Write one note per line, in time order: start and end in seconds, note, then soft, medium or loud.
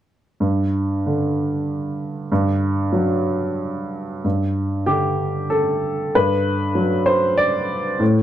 0.40 2.26 G2 soft
1.06 3.05 D3 soft
2.32 4.21 G2 medium
2.93 4.24 F#3 soft
4.24 6.11 G2 soft
4.86 6.88 D3 soft
4.86 5.51 G4 medium
5.50 6.14 A4 medium
6.15 7.96 G2 soft
6.15 7.07 B4 medium
6.75 8.00 F#3 soft
7.06 7.37 C5 medium
7.38 8.00 D5 medium
7.99 8.23 A2 medium